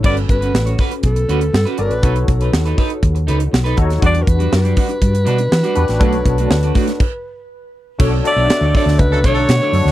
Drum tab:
CC |x---------------|----------------|----------------|--------x-------|
HH |-xxx-xoxxxxx-xxx|xxxx-xoxxxxx-xxx|xxxx-xoxxxxx-xxx|xxxx-xox--------|
SD |----o-------o---|----o-------o--o|----o-------o--o|----o--o--------|
BD |o-o---o-o-------|o-o---o-o-----o-|o-o---o-o-------|o-o---o-o-------|

CC |x---------------|
HH |--x-x-o-x-x-x-o-|
SD |----o--o----o--o|
BD |o-----o-o-o-----|